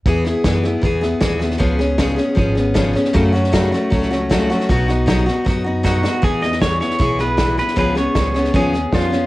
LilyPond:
<<
  \new Staff \with { instrumentName = "Pedal steel guitar" } { \time 4/4 \key e \major \tempo 4 = 156 r1 | r1 | r1 | r2. fis'4 |
gis'8 dis''8 cis''8 cis''4 b'4 b'8 | b'8 cis''4. gis'4 eis'4 | }
  \new Staff \with { instrumentName = "Steel-string acoustic guitar" } { \time 4/4 \key e \major <e b e' gis'>8 <b e' gis'>8 <e b e' gis'>8 <b e' gis'>8 <e b e' gis'>8 <b e' gis'>8 <e b e' gis'>8 <b e' gis'>8 | <cis eis b cis' gis'>8 <b cis' gis'>8 <cis eis b cis' gis'>8 <b cis' gis'>8 <eis b cis' gis'>8 <b cis' gis'>8 <cis eis b cis' gis'>8 <b cis' gis'>8 | <fis, cis fis a cis' fis'>8 <fis a cis' fis'>8 <fis, cis fis a cis' fis'>8 <fis a cis' fis'>8 <fis a cis' fis'>8 <fis a cis' fis'>8 <fis, cis fis a cis' fis'>8 <fis a cis' fis'>8 | <b, fis b dis' fis'>8 <b dis' fis'>8 <b, fis b dis' fis'>8 <b dis' fis'>8 <fis b dis' fis'>8 <b dis' fis'>8 <b, fis b dis' fis'>8 <b dis' fis'>8 |
<e b e' gis'>8 <b e' gis'>8 <e b e' gis'>8 <b e' gis'>8 <e b e' gis'>8 <b e' gis'>8 <e b e' gis'>8 <b e' gis'>8 | <cis eis b cis' gis'>8 <b cis' gis'>8 <eis b cis' gis'>8 <b cis' gis'>8 <cis eis b cis' gis'>8 <b cis' gis'>8 <eis b cis' gis'>8 <b cis' gis'>8 | }
  \new Staff \with { instrumentName = "Upright bass" } { \clef bass \time 4/4 \key e \major e,4 fis,4 e,4 dis,4 | cis,2 gis,,2 | fis,2 cis,2 | b,,2 fis,2 |
e,2 b,,2 | cis,4 cis,4 dis,4 eis,4 | }
  \new DrumStaff \with { instrumentName = "Drums" } \drummode { \time 4/4 <bd sn>8 sn8 <hhp bd sn>8 sn8 <bd sn>8 sn8 <hhp bd sn>8 sn16 sn16 | <bd sn>8 sn8 <hhp bd sn>8 sn8 <bd sn>8 sn8 <hhp bd sn>8 sn16 sn16 | <bd sn>8 sn16 sn16 <hhp bd sn>8 sn8 <bd sn>16 sn16 sn8 <hhp bd sn>8 sn16 sn16 | <bd sn>8 sn8 <hhp bd sn>8 sn8 <bd sn>4 <hhp bd sn>8 sn8 |
<bd sn>8 sn16 sn16 <hhp bd sn>8 sn16 sn16 <bd sn>8 sn8 <hhp bd sn>8 sn16 sn16 | <bd sn>8 sn8 <hhp bd sn>8 sn16 sn16 <bd sn>8 sn8 <hhp bd sn>8 sn8 | }
>>